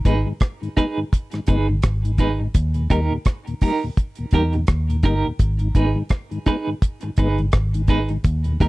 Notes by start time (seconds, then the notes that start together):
0.05 G#1 G#3 B3 D#4 G#4 B4, kick, closed hi-hat
0.26 G#2 D#3
0.40 kick, cross-stick, closed hi-hat
0.62 G#2 D#3, closed hi-hat
0.77 G#3 B3 D#4 G#4 B4, kick, closed hi-hat
0.97 G#2 D#3
1.13 kick, closed hi-hat
1.31 G#2 D#3, cross-stick, closed hi-hat
1.47 G1 G#3 B3 D#4 G#4 B4, kick, closed hi-hat
1.69 G#2 D#3
1.82 G#1, kick, cross-stick, closed hi-hat
2.05 G#2 D#3, closed hi-hat
2.18 G#3 B3 D#4 G#4 B4, kick, closed hi-hat
2.40 G#2 D#3, muted clean electric guitar stroke
2.54 D#2, kick, closed hi-hat
2.74 D#2 A#2, closed hi-hat
2.90 D#2 G3 A#3 D#4 G4 A#4, kick, closed hi-hat
3.11 D#2 A#2
3.25 kick, cross-stick, closed hi-hat
3.47 D#2 A#2, closed hi-hat
3.61 G3 A#3 D#4 G4 A#4, kick, open hi-hat
3.83 D#2 A#2
3.97 kick, closed hi-hat
4.15 D#2 A#2, closed hi-hat
4.31 E2 G3 A#3 D#4 G4 A#4, kick, closed hi-hat
4.53 D#2 A#2, muted clean electric guitar stroke, closed hi-hat
4.67 D#2, kick, cross-stick, closed hi-hat
4.89 D#2 A#2, closed hi-hat
5.03 G1 G3 A#3 D#4 G4 A#4, kick, closed hi-hat
5.25 D#2 A#2
5.39 G#1, kick, closed hi-hat
5.59 G#2 D#3, closed hi-hat
5.75 G#1 G#3 B3 D#4 G#4 B4, kick, closed hi-hat
5.96 G#2 D#3
6.09 kick, cross-stick, closed hi-hat
6.31 G#2 D#3, closed hi-hat
6.46 G#3 B3 D#4 G#4 B4, kick, closed hi-hat
6.67 G#2 D#3
6.82 kick, closed hi-hat
7.01 G#2 D#3, muted clean electric guitar stroke, closed hi-hat
7.17 G1 G#3 B3 D#4 G#4 B4, kick, closed hi-hat
7.38 G#2 D#3, closed hi-hat
7.52 G#1, kick, cross-stick, closed hi-hat
7.74 G#2 D#3, closed hi-hat
7.87 G#3 B3 D#4 G#4 B4, kick, closed hi-hat
8.08 G#2 D#3, muted clean electric guitar stroke, closed hi-hat
8.24 D#2, kick, closed hi-hat
8.44 D#2 A#2, closed hi-hat
8.60 D#2 G3 A#3 D#4 G4 A#4, kick, closed hi-hat